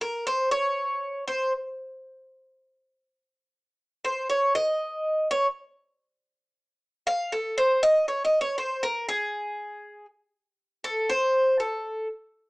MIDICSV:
0, 0, Header, 1, 2, 480
1, 0, Start_track
1, 0, Tempo, 503778
1, 11, Time_signature, 4, 2, 24, 8
1, 11909, End_track
2, 0, Start_track
2, 0, Title_t, "Cuban tres"
2, 0, Program_c, 0, 25
2, 12, Note_on_c, 0, 70, 72
2, 245, Note_off_c, 0, 70, 0
2, 255, Note_on_c, 0, 72, 91
2, 485, Note_off_c, 0, 72, 0
2, 489, Note_on_c, 0, 73, 88
2, 1174, Note_off_c, 0, 73, 0
2, 1216, Note_on_c, 0, 72, 81
2, 1448, Note_off_c, 0, 72, 0
2, 3855, Note_on_c, 0, 72, 67
2, 4089, Note_off_c, 0, 72, 0
2, 4093, Note_on_c, 0, 73, 83
2, 4329, Note_off_c, 0, 73, 0
2, 4336, Note_on_c, 0, 75, 97
2, 5020, Note_off_c, 0, 75, 0
2, 5058, Note_on_c, 0, 73, 83
2, 5202, Note_off_c, 0, 73, 0
2, 6734, Note_on_c, 0, 77, 91
2, 6970, Note_off_c, 0, 77, 0
2, 6978, Note_on_c, 0, 69, 62
2, 7212, Note_off_c, 0, 69, 0
2, 7219, Note_on_c, 0, 72, 87
2, 7452, Note_off_c, 0, 72, 0
2, 7459, Note_on_c, 0, 75, 121
2, 7692, Note_off_c, 0, 75, 0
2, 7699, Note_on_c, 0, 73, 79
2, 7853, Note_off_c, 0, 73, 0
2, 7856, Note_on_c, 0, 75, 82
2, 8009, Note_off_c, 0, 75, 0
2, 8013, Note_on_c, 0, 73, 90
2, 8170, Note_off_c, 0, 73, 0
2, 8174, Note_on_c, 0, 72, 80
2, 8409, Note_off_c, 0, 72, 0
2, 8413, Note_on_c, 0, 70, 91
2, 8648, Note_off_c, 0, 70, 0
2, 8657, Note_on_c, 0, 68, 91
2, 9578, Note_off_c, 0, 68, 0
2, 10330, Note_on_c, 0, 69, 86
2, 10565, Note_off_c, 0, 69, 0
2, 10571, Note_on_c, 0, 72, 98
2, 11018, Note_off_c, 0, 72, 0
2, 11051, Note_on_c, 0, 69, 61
2, 11497, Note_off_c, 0, 69, 0
2, 11909, End_track
0, 0, End_of_file